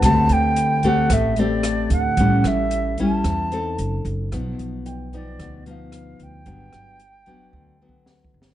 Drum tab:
HH |x--x--x--x--x--x--x--x--|x--x--x--x--x--x--x--x--|x--x--x--x--x--x--x--x--|x--x--x--x--------------|
SD |r-----------r-----r-----|---r--------r-----------|r-----------r-----r-----|---r--------------o---o-|
BD |o--------o--o--------o--|o--------o--o--------o--|o--------o--o--------o--|o--------o--o---o---o---|